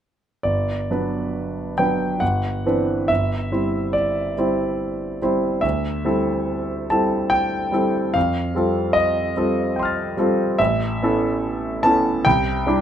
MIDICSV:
0, 0, Header, 1, 2, 480
1, 0, Start_track
1, 0, Key_signature, 1, "major"
1, 0, Tempo, 884956
1, 246, Time_signature, 3, 2, 24, 8
1, 1679, Tempo, 853485
1, 2639, Tempo, 839161
1, 4559, Tempo, 805369
1, 5519, Tempo, 831025
1, 7276, End_track
2, 0, Start_track
2, 0, Title_t, "Grand piano"
2, 0, Program_c, 0, 0
2, 235, Note_on_c, 0, 74, 54
2, 241, Note_on_c, 0, 31, 37
2, 360, Control_c, 0, 64, 127
2, 480, Note_off_c, 0, 31, 0
2, 492, Note_on_c, 0, 54, 26
2, 494, Note_on_c, 0, 62, 29
2, 495, Note_on_c, 0, 59, 28
2, 497, Note_on_c, 0, 71, 29
2, 941, Note_off_c, 0, 54, 0
2, 942, Note_off_c, 0, 62, 0
2, 943, Note_off_c, 0, 59, 0
2, 943, Note_off_c, 0, 71, 0
2, 956, Note_off_c, 0, 74, 0
2, 964, Note_on_c, 0, 79, 55
2, 970, Note_on_c, 0, 54, 26
2, 970, Note_on_c, 0, 59, 26
2, 973, Note_on_c, 0, 71, 29
2, 974, Note_on_c, 0, 62, 27
2, 1181, Note_off_c, 0, 59, 0
2, 1182, Note_off_c, 0, 54, 0
2, 1183, Note_off_c, 0, 71, 0
2, 1184, Note_off_c, 0, 62, 0
2, 1194, Note_on_c, 0, 78, 57
2, 1200, Note_off_c, 0, 79, 0
2, 1201, Note_on_c, 0, 31, 42
2, 1209, Control_c, 0, 64, 0
2, 1302, Control_c, 0, 64, 127
2, 1433, Note_off_c, 0, 31, 0
2, 1442, Note_on_c, 0, 52, 28
2, 1445, Note_on_c, 0, 60, 28
2, 1446, Note_on_c, 0, 62, 29
2, 1448, Note_on_c, 0, 71, 30
2, 1657, Note_off_c, 0, 52, 0
2, 1658, Note_off_c, 0, 60, 0
2, 1659, Note_off_c, 0, 62, 0
2, 1660, Note_off_c, 0, 71, 0
2, 1671, Note_on_c, 0, 76, 60
2, 1675, Note_off_c, 0, 78, 0
2, 1675, Note_on_c, 0, 31, 34
2, 1688, Control_c, 0, 64, 0
2, 1795, Control_c, 0, 64, 127
2, 1911, Note_off_c, 0, 31, 0
2, 1917, Note_on_c, 0, 55, 27
2, 1918, Note_on_c, 0, 60, 30
2, 1918, Note_on_c, 0, 64, 26
2, 1920, Note_on_c, 0, 72, 31
2, 2149, Note_on_c, 0, 74, 60
2, 2155, Note_off_c, 0, 76, 0
2, 2374, Note_off_c, 0, 55, 0
2, 2375, Note_off_c, 0, 60, 0
2, 2375, Note_off_c, 0, 64, 0
2, 2376, Note_off_c, 0, 72, 0
2, 2402, Note_on_c, 0, 55, 26
2, 2403, Note_on_c, 0, 60, 27
2, 2404, Note_on_c, 0, 64, 28
2, 2406, Note_on_c, 0, 72, 30
2, 2856, Note_off_c, 0, 55, 0
2, 2857, Note_off_c, 0, 60, 0
2, 2858, Note_off_c, 0, 64, 0
2, 2858, Note_off_c, 0, 72, 0
2, 2879, Note_on_c, 0, 55, 29
2, 2879, Note_on_c, 0, 60, 32
2, 2880, Note_on_c, 0, 64, 31
2, 2883, Note_on_c, 0, 72, 35
2, 3093, Note_off_c, 0, 55, 0
2, 3093, Note_off_c, 0, 60, 0
2, 3093, Note_off_c, 0, 64, 0
2, 3095, Note_off_c, 0, 72, 0
2, 3102, Note_on_c, 0, 76, 59
2, 3107, Note_on_c, 0, 38, 37
2, 3110, Note_off_c, 0, 74, 0
2, 3124, Control_c, 0, 64, 0
2, 3224, Control_c, 0, 64, 127
2, 3342, Note_off_c, 0, 38, 0
2, 3352, Note_on_c, 0, 55, 30
2, 3353, Note_on_c, 0, 60, 29
2, 3355, Note_on_c, 0, 64, 29
2, 3357, Note_on_c, 0, 69, 28
2, 3815, Note_off_c, 0, 55, 0
2, 3816, Note_off_c, 0, 60, 0
2, 3817, Note_off_c, 0, 64, 0
2, 3818, Note_off_c, 0, 69, 0
2, 3832, Note_off_c, 0, 76, 0
2, 3840, Note_on_c, 0, 81, 57
2, 3841, Note_on_c, 0, 55, 31
2, 3847, Note_on_c, 0, 60, 31
2, 3848, Note_on_c, 0, 64, 26
2, 3848, Note_on_c, 0, 69, 33
2, 4066, Note_on_c, 0, 79, 71
2, 4080, Note_off_c, 0, 81, 0
2, 4298, Note_off_c, 0, 55, 0
2, 4301, Note_off_c, 0, 60, 0
2, 4301, Note_off_c, 0, 64, 0
2, 4302, Note_off_c, 0, 69, 0
2, 4308, Note_on_c, 0, 55, 35
2, 4312, Note_on_c, 0, 60, 33
2, 4314, Note_on_c, 0, 64, 30
2, 4318, Note_on_c, 0, 69, 36
2, 4528, Note_off_c, 0, 55, 0
2, 4530, Note_off_c, 0, 60, 0
2, 4531, Note_off_c, 0, 64, 0
2, 4533, Note_off_c, 0, 69, 0
2, 4546, Note_on_c, 0, 77, 65
2, 4550, Note_off_c, 0, 79, 0
2, 4555, Note_on_c, 0, 41, 43
2, 4566, Control_c, 0, 64, 0
2, 4646, Control_c, 0, 64, 127
2, 4788, Note_off_c, 0, 41, 0
2, 4792, Note_on_c, 0, 55, 32
2, 4798, Note_on_c, 0, 65, 32
2, 4799, Note_on_c, 0, 60, 28
2, 4800, Note_on_c, 0, 69, 36
2, 5019, Note_on_c, 0, 75, 74
2, 5028, Note_off_c, 0, 77, 0
2, 5247, Note_off_c, 0, 55, 0
2, 5250, Note_off_c, 0, 65, 0
2, 5251, Note_off_c, 0, 60, 0
2, 5252, Note_off_c, 0, 69, 0
2, 5278, Note_on_c, 0, 55, 30
2, 5281, Note_on_c, 0, 60, 33
2, 5282, Note_on_c, 0, 65, 30
2, 5285, Note_on_c, 0, 69, 35
2, 5513, Note_on_c, 0, 79, 29
2, 5533, Note_on_c, 0, 84, 31
2, 5552, Note_on_c, 0, 89, 29
2, 5566, Note_on_c, 0, 93, 31
2, 5732, Note_off_c, 0, 55, 0
2, 5734, Note_off_c, 0, 60, 0
2, 5734, Note_off_c, 0, 65, 0
2, 5736, Note_off_c, 0, 69, 0
2, 5752, Note_on_c, 0, 55, 38
2, 5758, Note_on_c, 0, 60, 37
2, 5758, Note_on_c, 0, 65, 36
2, 5762, Note_on_c, 0, 69, 38
2, 5968, Note_off_c, 0, 79, 0
2, 5969, Note_off_c, 0, 55, 0
2, 5972, Note_off_c, 0, 60, 0
2, 5972, Note_off_c, 0, 65, 0
2, 5974, Note_off_c, 0, 69, 0
2, 5978, Note_off_c, 0, 84, 0
2, 5985, Note_off_c, 0, 75, 0
2, 5987, Note_off_c, 0, 89, 0
2, 5990, Note_on_c, 0, 76, 69
2, 5993, Note_on_c, 0, 33, 47
2, 5994, Note_off_c, 0, 93, 0
2, 6002, Control_c, 0, 64, 0
2, 6099, Control_c, 0, 64, 127
2, 6228, Note_off_c, 0, 33, 0
2, 6244, Note_on_c, 0, 59, 33
2, 6247, Note_on_c, 0, 64, 35
2, 6249, Note_on_c, 0, 61, 32
2, 6254, Note_on_c, 0, 69, 41
2, 6698, Note_off_c, 0, 59, 0
2, 6699, Note_off_c, 0, 64, 0
2, 6701, Note_off_c, 0, 61, 0
2, 6703, Note_off_c, 0, 69, 0
2, 6709, Note_on_c, 0, 81, 79
2, 6714, Note_on_c, 0, 59, 37
2, 6715, Note_off_c, 0, 76, 0
2, 6718, Note_on_c, 0, 61, 35
2, 6723, Note_on_c, 0, 64, 35
2, 6723, Note_on_c, 0, 69, 39
2, 6929, Note_off_c, 0, 59, 0
2, 6931, Note_off_c, 0, 61, 0
2, 6934, Note_off_c, 0, 64, 0
2, 6934, Note_off_c, 0, 69, 0
2, 6949, Note_on_c, 0, 79, 80
2, 6950, Note_off_c, 0, 81, 0
2, 6957, Note_on_c, 0, 36, 51
2, 6963, Control_c, 0, 64, 0
2, 7041, Control_c, 0, 64, 127
2, 7190, Note_off_c, 0, 36, 0
2, 7192, Note_on_c, 0, 55, 42
2, 7193, Note_on_c, 0, 62, 40
2, 7198, Note_on_c, 0, 64, 36
2, 7199, Note_on_c, 0, 67, 41
2, 7276, Note_off_c, 0, 55, 0
2, 7276, Note_off_c, 0, 62, 0
2, 7276, Note_off_c, 0, 64, 0
2, 7276, Note_off_c, 0, 67, 0
2, 7276, Note_off_c, 0, 79, 0
2, 7276, End_track
0, 0, End_of_file